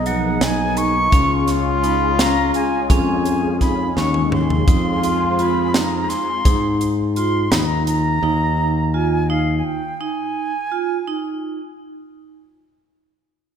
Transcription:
0.00 0.38 B1 medium
0.00 1.09 A#3 medium
0.00 1.09 B3 medium
0.00 1.09 D#4 medium
0.00 1.14 D#4 medium
0.00 1.09 G#4 medium
0.06 0.31 F3 medium
0.06 0.44 F#5 medium
0.06 closed hi-hat medium
0.41 1.08 B1 medium
0.41 0.91 D#4 medium
0.41 0.79 G#5 loud
0.41 snare loud
0.41 closed hi-hat medium
0.77 1.57 C#6 loud
0.77 closed hi-hat medium
1.12 2.50 C#2 loud
1.12 4.64 G#3 medium
1.12 1.62 C#4 medium
1.12 4.64 C#4 medium
1.12 4.32 F4 loud
1.12 4.64 F4 medium
1.12 4.64 G#4 medium
1.12 kick loud
1.12 closed hi-hat medium
1.48 snare soft
1.48 closed hi-hat medium
1.83 2.08 D#4 medium
1.83 2.16 B5 medium
1.83 closed hi-hat medium
2.19 2.68 C#4 medium
2.19 2.52 A#5 loud
2.19 snare loud
2.19 closed hi-hat medium
2.54 2.88 G#5 medium
2.54 closed hi-hat medium
2.90 3.92 F2 loud
2.90 3.39 C#4 medium
2.90 3.57 G#5 medium
2.90 kick loud
2.90 closed hi-hat medium
3.25 closed hi-hat medium
3.61 3.86 D#4 medium
3.61 3.94 B5 medium
3.61 kick medium
3.61 snare soft
3.61 closed hi-hat medium
3.97 4.63 D#2 medium
3.97 4.46 C#4 medium
3.97 4.30 C#6 medium
3.97 snare medium
4.14 high tom medium
4.32 5.34 C6 loud
4.32 mid tom medium
4.50 floor tom medium
4.67 6.05 F2 loud
4.67 6.41 G#3 medium
4.67 6.41 C4 medium
4.67 5.17 D#4 medium
4.67 6.41 F4 medium
4.67 6.41 F4 loud
4.67 6.41 G#4 medium
4.67 kick loud
4.67 closed hi-hat medium
5.03 closed hi-hat medium
5.39 5.64 F4 medium
5.39 5.76 B5 medium
5.39 closed hi-hat soft
5.74 6.24 D#4 medium
5.74 6.11 A#5 medium
5.74 snare loud
5.74 closed hi-hat medium
6.09 6.89 C6 loud
6.09 snare soft
6.09 closed hi-hat medium
6.45 7.48 G#2 medium
6.45 6.94 D#4 medium
6.45 kick loud
6.45 closed hi-hat medium
6.81 closed hi-hat medium
7.16 7.41 F4 medium
7.16 7.53 C6 medium
7.16 closed hi-hat medium
7.51 8.19 D#2 medium
7.51 8.01 D#4 medium
7.51 7.59 A#5 medium
7.51 snare loud
7.51 closed hi-hat medium
7.58 7.66 B5 medium
7.65 7.86 A#5 loud
7.87 8.96 A#5 medium
7.87 closed hi-hat medium
8.23 9.61 D#2 loud
8.23 8.72 D#4 medium
8.94 9.18 F4 medium
8.94 9.31 G#5 medium
9.30 9.79 D#4 medium
9.30 9.58 F5 medium
9.58 9.66 G#5 medium
9.65 10.02 G5 medium
10.00 10.50 D#4 medium
10.00 11.42 G#5 medium
10.72 10.96 F4 medium
11.08 11.56 D#4 medium

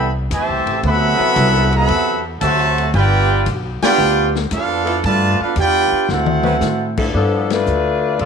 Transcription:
0.00 0.28 C2 medium
0.00 0.11 E3 loud
0.00 0.11 G3 loud
0.00 0.10 B3 loud
0.00 0.11 A4 loud
0.00 0.11 E5 medium
0.00 0.11 G5 loud
0.00 0.11 B5 loud
0.30 0.50 E2 loud
0.30 0.79 C3 medium
0.30 0.80 E3 medium
0.30 0.80 A3 medium
0.30 0.81 G4 medium
0.30 0.80 C5 medium
0.30 0.80 E5 loud
0.30 0.81 A5 loud
0.30 kick soft
0.30 hi-hat pedal medium
0.30 ride medium
0.48 0.65 C2 medium
0.66 0.82 A1 medium
0.66 ride medium
0.83 1.17 D2 loud
0.83 1.72 C3 loud
0.83 1.72 F#3 loud
0.83 1.72 B3 loud
0.83 1.74 A4 loud
0.83 1.74 F#5 loud
0.83 kick soft
0.83 ride medium
0.87 1.74 E5 loud
0.87 1.74 B5 loud
1.18 1.84 C3 loud
1.18 1.84 F#3 loud
1.18 1.84 E4 medium
1.18 1.84 B4 loud
1.18 muted upright bass stroke medium
1.36 1.87 C2 loud
1.36 kick soft
1.36 hi-hat pedal medium
1.36 ride medium
1.72 2.22 C3 loud
1.72 2.22 F#3 medium
1.72 2.22 B3 medium
1.72 2.23 A4 loud
1.72 2.23 E5 medium
1.72 2.23 F#5 medium
1.72 2.23 B5 loud
1.72 ride medium
1.88 2.40 E2 medium
1.88 kick soft
1.88 ride medium
2.41 2.92 D2 loud
2.41 2.90 C3 medium
2.41 2.90 F#3 loud
2.41 2.90 A3 loud
2.41 2.90 F#4 loud
2.41 2.90 C5 loud
2.41 2.90 E5 loud
2.41 2.90 A5 loud
2.41 kick soft
2.41 hi-hat pedal medium
2.41 ride medium
2.78 ride medium
2.94 3.45 G1 loud
2.94 3.46 B3 loud
2.94 3.46 D4 loud
2.94 3.46 F4 loud
2.94 3.46 G4 medium
2.94 3.47 B4 loud
2.94 3.47 D5 loud
2.94 3.47 G5 loud
2.94 kick soft
2.94 ride medium
3.46 3.80 B1 loud
3.46 kick soft
3.46 hi-hat pedal soft
3.46 ride medium
3.82 4.32 B3 loud
3.82 4.32 D4 loud
3.82 4.32 F4 loud
3.82 4.32 G4 loud
3.82 4.32 B4 loud
3.82 4.32 D5 loud
3.82 4.31 G5 loud
3.82 muted upright bass stroke soft
3.82 snare medium
3.82 ride medium
3.98 4.49 D2 medium
4.35 snare medium
4.51 5.02 F2 medium
4.51 5.01 B3 medium
4.51 5.01 D4 medium
4.51 5.01 F4 medium
4.51 5.01 A4 medium
4.51 5.00 B4 medium
4.51 5.01 F5 loud
4.51 kick soft
4.51 hi-hat pedal medium
4.51 ride medium
4.85 4.97 F3 loud
4.85 4.97 B3 medium
4.85 4.97 E4 medium
4.85 4.97 A4 loud
4.85 ride medium
5.04 5.37 G2 loud
5.04 5.41 D3 loud
5.04 5.41 F3 medium
5.04 5.41 A3 medium
5.04 5.41 F4 loud
5.04 5.41 B4 loud
5.04 5.41 D5 loud
5.04 5.41 A5 loud
5.04 kick soft
5.04 ride medium
5.40 5.56 B3 medium
5.40 5.56 D4 medium
5.40 5.57 F4 medium
5.40 5.56 A4 medium
5.40 5.56 B4 medium
5.40 5.56 F5 medium
5.40 muted upright bass stroke soft
5.56 5.90 E2 loud
5.56 6.06 B3 medium
5.56 6.06 D4 medium
5.56 6.06 G4 medium
5.56 6.07 D5 loud
5.56 6.07 G5 loud
5.56 kick soft
5.56 hi-hat pedal medium
5.56 ride medium
5.60 6.07 F4 medium
5.60 6.07 B4 medium
5.92 muted upright bass stroke soft
6.09 6.60 D2 medium
6.09 6.98 A3 medium
6.09 6.99 C4 medium
6.09 7.00 E4 medium
6.09 6.99 F#4 medium
6.09 7.00 C5 medium
6.09 6.99 F#5 loud
6.09 snare medium
6.13 7.00 A4 medium
6.26 mid tom medium
6.43 6.56 F#3 loud
6.43 6.56 C4 loud
6.43 6.56 E4 medium
6.43 6.56 B4 loud
6.43 mid tom medium
6.61 7.12 A2 loud
6.61 snare medium
6.61 hi-hat pedal medium
6.97 7.64 G2 loud
6.97 7.64 F3 loud
6.97 7.63 B3 medium
6.97 7.64 E4 loud
6.97 7.64 A4 loud
6.97 kick loud
6.97 crash loud
7.14 7.65 G2 medium
7.14 7.49 F3 medium
7.14 7.48 B3 medium
7.14 7.48 D4 medium
7.14 7.48 A4 medium
7.14 kick soft
7.50 8.17 A3 medium
7.50 8.17 D4 medium
7.50 8.17 F4 medium
7.50 8.17 B4 medium
7.50 snare medium
7.50 ride medium
7.66 8.18 D2 medium
7.66 hi-hat pedal medium
8.19 8.25 B1 medium
8.19 8.25 B3 medium
8.19 8.25 F4 medium
8.19 8.25 A4 medium
8.19 8.25 D5 medium
8.19 kick soft
8.19 ride medium

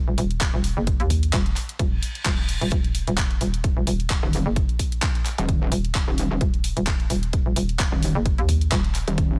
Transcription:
0.08 0.16 D#1 medium
0.18 0.52 D#1 loud
0.18 open hi-hat loud
0.31 closed hi-hat soft
0.41 kick loud
0.41 clap loud
0.41 closed hi-hat medium
0.54 0.75 D#1 loud
0.64 open hi-hat loud
0.77 0.98 F#1 loud
0.87 kick loud
0.87 closed hi-hat medium
1.00 1.32 D#2 loud
1.00 closed hi-hat soft
1.10 kick medium
1.10 open hi-hat loud
1.23 closed hi-hat medium
1.33 1.55 D#1 loud
1.33 kick loud
1.33 clap loud
1.33 closed hi-hat medium
1.46 closed hi-hat soft
1.56 clap soft
1.56 open hi-hat loud
1.69 closed hi-hat medium
1.79 2.01 D#1 loud
1.79 kick loud
1.79 closed hi-hat medium
1.79 reverse cymbal medium
2.03 open hi-hat loud
2.15 closed hi-hat soft
2.26 2.59 D#1 loud
2.26 kick loud
2.26 clap loud
2.26 closed hi-hat medium
2.49 open hi-hat loud
2.61 2.70 D#1 loud
2.61 closed hi-hat soft
2.72 3.06 D#1 loud
2.72 kick loud
2.72 closed hi-hat medium
2.84 closed hi-hat soft
2.95 open hi-hat loud
3.07 3.39 D#1 loud
3.07 closed hi-hat medium
3.18 kick loud
3.18 clap loud
3.18 closed hi-hat medium
3.31 closed hi-hat soft
3.41 3.75 D#1 medium
3.41 open hi-hat loud
3.54 closed hi-hat medium
3.64 kick loud
3.64 closed hi-hat medium
3.77 3.85 D#1 medium
3.87 4.21 D#1 loud
3.87 open hi-hat loud
4.00 closed hi-hat soft
4.10 kick loud
4.10 clap loud
4.10 closed hi-hat medium
4.23 4.44 D#1 medium
4.33 open hi-hat loud
4.46 4.67 F#1 medium
4.56 kick loud
4.56 closed hi-hat medium
4.69 closed hi-hat soft
4.79 kick medium
4.79 open hi-hat loud
4.92 closed hi-hat medium
5.02 kick loud
5.02 clap loud
5.02 closed hi-hat medium
5.15 closed hi-hat soft
5.26 clap soft
5.26 open hi-hat loud
5.38 5.70 D#1 loud
5.38 closed hi-hat medium
5.49 kick loud
5.49 closed hi-hat medium
5.72 6.06 D#1 loud
5.72 open hi-hat loud
5.85 closed hi-hat soft
5.95 kick loud
5.95 clap loud
5.95 closed hi-hat medium
6.08 6.29 D#1 loud
6.18 open hi-hat loud
6.31 6.39 D#1 loud
6.41 6.75 D#1 loud
6.41 kick loud
6.41 closed hi-hat medium
6.54 closed hi-hat soft
6.64 open hi-hat loud
6.77 7.09 D#1 loud
6.77 closed hi-hat medium
6.87 kick loud
6.87 clap loud
6.87 closed hi-hat medium
7.00 closed hi-hat soft
7.10 7.44 D#1 loud
7.10 open hi-hat loud
7.23 closed hi-hat soft
7.33 kick loud
7.33 closed hi-hat medium
7.46 7.55 D#1 medium
7.56 7.90 D#1 loud
7.56 open hi-hat loud
7.69 closed hi-hat soft
7.79 kick loud
7.79 clap loud
7.79 closed hi-hat medium
7.92 8.13 D#1 medium
8.03 open hi-hat loud
8.15 8.36 F#1 loud
8.26 kick loud
8.26 closed hi-hat medium
8.38 8.70 D#2 loud
8.38 closed hi-hat soft
8.49 kick medium
8.49 open hi-hat loud
8.61 closed hi-hat soft
8.72 9.06 D#1 loud
8.72 kick loud
8.72 clap loud
8.72 closed hi-hat medium
8.85 closed hi-hat soft
8.95 clap soft
8.95 open hi-hat loud
9.08 9.39 D#1 loud
9.08 closed hi-hat medium
9.18 kick loud
9.18 closed hi-hat medium

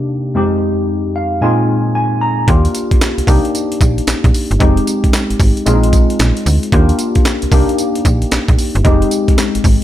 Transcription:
0.00 0.32 C3 medium
0.00 0.32 A#3 medium
0.00 0.33 D4 medium
0.00 0.33 D#4 medium
0.00 0.33 G4 medium
0.34 1.39 F2 medium
0.34 1.39 G#3 medium
0.34 1.39 C4 medium
0.34 1.40 D#4 medium
0.34 1.40 G4 medium
1.16 1.40 F5 medium
1.41 2.45 A#2 medium
1.41 2.46 G#3 medium
1.41 2.46 C4 medium
1.41 2.46 D#4 medium
1.41 2.46 F4 medium
1.41 1.91 G#5 medium
1.95 2.20 G#5 medium
2.21 2.46 A#5 medium
2.48 2.68 D#2 loud
2.48 3.25 A#3 medium
2.48 3.27 D4 medium
2.48 3.28 F4 medium
2.48 3.28 G4 medium
2.48 kick loud
2.48 closed hi-hat medium
2.65 closed hi-hat medium
2.75 closed hi-hat medium
2.75 tambourine medium
2.91 2.95 C2 soft
2.91 kick medium
2.91 closed hi-hat medium
3.01 snare loud
3.01 clap medium
3.01 closed hi-hat medium
3.01 tambourine loud
3.18 3.22 C2 medium
3.18 closed hi-hat medium
3.27 3.40 C2 loud
3.27 4.57 A#3 medium
3.27 4.58 D4 medium
3.27 4.58 D#4 medium
3.27 4.58 G4 medium
3.27 kick loud
3.27 open hi-hat medium
3.27 tambourine medium
3.45 closed hi-hat medium
3.55 closed hi-hat medium
3.55 tambourine medium
3.72 closed hi-hat medium
3.81 4.00 A#1 loud
3.81 kick loud
3.81 closed hi-hat medium
3.81 tambourine medium
3.98 closed hi-hat medium
4.07 4.14 A#1 soft
4.07 snare loud
4.07 clap medium
4.07 closed hi-hat medium
4.07 tambourine medium
4.24 4.31 A#1 loud
4.24 kick medium
4.24 closed hi-hat soft
4.34 open hi-hat medium
4.34 tambourine medium
4.51 4.58 G1 medium
4.51 closed hi-hat medium
4.59 4.80 F1 loud
4.59 5.64 G#3 medium
4.59 5.64 C4 medium
4.59 5.65 D#4 medium
4.59 5.65 G4 medium
4.59 kick loud
4.59 closed hi-hat medium
4.77 closed hi-hat medium
4.87 closed hi-hat medium
4.87 tambourine medium
5.04 5.08 G#1 soft
5.04 kick medium
5.04 closed hi-hat medium
5.13 snare loud
5.13 clap medium
5.13 closed hi-hat medium
5.13 tambourine loud
5.30 5.34 G#1 medium
5.30 closed hi-hat medium
5.40 5.52 G#1 loud
5.40 kick loud
5.40 open hi-hat medium
5.40 tambourine medium
5.57 closed hi-hat medium
5.66 6.06 A#1 loud
5.66 6.70 G#3 medium
5.66 6.70 C4 medium
5.66 5.75 D4 medium
5.66 6.71 F4 medium
5.66 closed hi-hat medium
5.66 tambourine medium
5.74 6.74 D#4 medium
5.83 closed hi-hat medium
5.93 kick loud
5.93 closed hi-hat medium
5.93 tambourine medium
6.10 closed hi-hat medium
6.19 6.32 A#1 loud
6.19 snare loud
6.19 clap medium
6.19 closed hi-hat medium
6.19 tambourine medium
6.37 closed hi-hat medium
6.46 6.59 D2 medium
6.46 open hi-hat medium
6.46 tambourine medium
6.63 closed hi-hat medium
6.72 6.92 D#2 loud
6.72 7.50 A#3 medium
6.72 7.51 D4 medium
6.72 7.53 F4 medium
6.72 7.53 G4 medium
6.72 kick loud
6.72 closed hi-hat medium
6.89 closed hi-hat medium
6.99 closed hi-hat medium
6.99 tambourine medium
7.15 7.20 C2 soft
7.15 kick medium
7.15 closed hi-hat medium
7.25 snare loud
7.25 clap medium
7.25 closed hi-hat medium
7.25 tambourine loud
7.42 7.47 C2 medium
7.42 closed hi-hat medium
7.52 7.65 C2 medium
7.52 8.82 A#3 medium
7.52 8.82 D4 medium
7.52 8.83 D#4 medium
7.52 8.83 G4 medium
7.52 kick loud
7.52 open hi-hat medium
7.52 tambourine medium
7.69 closed hi-hat medium
7.78 closed hi-hat medium
7.78 tambourine medium
7.95 closed hi-hat medium
8.05 8.25 A#1 loud
8.05 kick loud
8.05 closed hi-hat medium
8.05 tambourine medium
8.22 closed hi-hat medium
8.32 8.39 A#1 soft
8.32 snare loud
8.32 clap medium
8.32 closed hi-hat medium
8.32 tambourine medium
8.48 8.56 A#1 loud
8.48 kick loud
8.48 closed hi-hat soft
8.58 open hi-hat medium
8.58 tambourine medium
8.75 8.82 G1 loud
8.75 closed hi-hat medium
8.84 9.05 F1 loud
8.84 9.84 G#3 medium
8.84 9.84 C4 medium
8.84 9.84 D#4 medium
8.84 9.84 G4 medium
8.84 kick loud
8.84 closed hi-hat medium
9.02 closed hi-hat medium
9.11 closed hi-hat medium
9.11 tambourine medium
9.28 9.32 G#1 soft
9.28 kick medium
9.28 closed hi-hat medium
9.38 snare loud
9.38 clap medium
9.38 closed hi-hat medium
9.38 tambourine loud
9.55 9.59 G#1 medium
9.55 closed hi-hat medium
9.64 9.77 G#1 medium
9.64 kick loud
9.64 open hi-hat medium
9.64 tambourine medium

